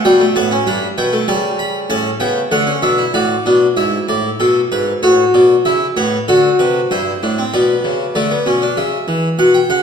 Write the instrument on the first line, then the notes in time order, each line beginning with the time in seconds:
harpsichord
0.05 B2 G3 G5
0.20 A3
0.36 A2 B3 A5
0.51 C#4
0.67 G2 D4 B5
0.98 B2 B3 G5
1.13 A3
1.28 C#3 G3 A5
1.59 B5
1.90 A2 C#4 A5
2.20 C#3 B3 G5
2.51 D3 A3 F#5
2.67 C#4
2.82 B2 D4 E5
2.98 E4
3.14 A2 F#4 D5
3.46 B2 D4
3.77 G#2 E4 E5
4.09 A2 D5
4.40 B2 A4
4.72 G#2 B4
5.03 A2 F#4 C#5
5.34 B2 D5
5.65 C#3 E4 E5
5.97 A2 B3 C#5
6.28 D3 F#4 A4
6.59 C3 B4
6.91 G2 E4 C5
7.23 A2 D4
7.38 C4
7.54 B2 B3 D5
7.84 C#3
8.15 D3 A3 D5
8.31 B3
8.46 B2 C#4
8.62 D4
8.77 C#3 E5
9.08 E3
9.39 B2 F#5
9.54 G5
9.70 C#3 F#5